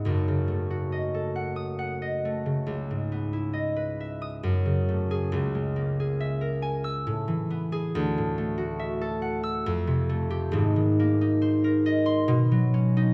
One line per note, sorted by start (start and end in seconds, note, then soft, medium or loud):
0.00 0.69 F#4 medium
0.00 0.91 D#5 soft
0.00 1.34 F#5 medium
0.00 0.10 G#5 soft
0.05 2.71 F#1 medium
0.05 2.71 F#2 medium
0.28 2.45 C#3 medium
0.48 2.24 A3 medium
0.70 2.71 F#4 medium
0.92 2.01 D#5 medium
1.14 2.72 A4 medium
1.36 1.77 F#5 medium
1.56 4.20 D#6 medium
1.79 2.71 F#5 medium
2.02 3.52 D#5 medium
2.25 2.72 A3 medium
2.46 2.71 C#3 medium
2.66 4.47 C#2 medium
2.91 4.48 G#2 medium
3.12 4.47 B3 medium
3.33 7.23 E4 medium
3.53 4.46 D#5 medium
3.76 4.47 B4 medium
4.00 6.19 E5 medium
4.22 4.47 D#6 medium
4.43 5.34 F#2 medium
4.66 5.32 C#3 medium
4.89 5.35 A3 medium
5.11 5.99 G#4 medium
5.32 7.09 C#2 medium
5.32 7.09 C#3 medium
5.55 7.97 G#3 medium
5.76 7.09 A#3 medium
6.00 7.71 G#4 medium
6.20 8.78 E5 medium
6.41 7.09 A#4 medium
6.62 7.97 G#5 medium
6.84 9.42 E6 medium
7.07 7.97 A2 medium
7.28 7.97 E3 medium
7.50 7.97 B3 medium
7.72 7.97 G#4 medium
7.95 9.69 D2 medium
8.18 9.70 A2 medium
8.38 10.08 A3 medium
8.58 9.68 F#4 medium
8.79 9.69 E5 medium
9.01 10.57 A4 medium
9.22 9.68 F#5 medium
9.43 9.68 E6 loud
9.66 10.57 F2 loud
9.87 10.57 C3 medium
10.09 10.57 A3 medium
10.30 10.56 G4 medium
10.52 12.31 G#1 medium
10.52 12.32 G#2 medium
10.76 12.32 D#3 medium
10.99 12.33 A#3 medium
11.21 12.96 D#4 medium
11.42 12.32 C5 medium
11.64 12.32 A#4 medium
11.86 13.14 D#5 medium
12.06 12.32 C6 loud
12.28 13.14 B2 loud
12.52 13.14 F#3 medium
12.74 13.14 C#4 medium
12.97 13.14 D#4 medium